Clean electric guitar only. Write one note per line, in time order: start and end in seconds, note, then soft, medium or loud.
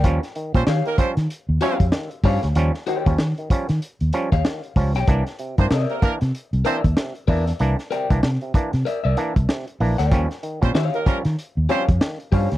0.67 0.83 G4 medium
0.67 0.84 C#5 medium
0.67 0.84 F5 medium
1.61 1.83 G4 loud
1.61 1.84 C#5 medium
1.61 1.84 F5 loud
2.24 2.40 G4 medium
2.24 2.41 C#5 loud
2.24 2.41 F5 loud
2.87 3.09 G4 medium
2.87 3.10 C#5 medium
2.87 3.10 G5 medium
4.32 4.44 G4 medium
4.32 4.43 C#5 medium
4.32 4.43 F5 medium
4.96 5.07 G4 medium
4.96 5.06 C#5 medium
4.96 5.06 G5 medium
5.71 5.93 A#4 medium
5.71 5.94 D5 medium
5.71 5.94 E5 medium
6.65 6.81 A#4 medium
6.65 6.82 D5 medium
6.65 6.82 E5 loud
7.28 7.44 A#4 medium
7.28 7.44 D5 loud
7.28 7.45 E5 medium
7.91 8.07 A#4 medium
7.91 8.08 D5 loud
7.91 8.08 G5 medium
8.85 8.98 A#4 medium
8.85 8.99 D5 medium
8.85 8.99 E5 medium
9.04 9.16 A#4 medium
9.04 9.16 D5 medium
9.04 9.15 E5 medium
9.98 10.17 A#4 medium
9.98 10.17 D5 medium
9.98 10.17 G5 medium
10.74 10.97 G4 medium
10.74 10.97 C#5 medium
10.74 10.98 F5 medium
11.69 11.86 G4 medium
11.69 11.86 C#5 loud
11.69 11.86 F5 loud
12.32 12.48 G4 medium
12.32 12.49 C#5 medium
12.32 12.49 F5 medium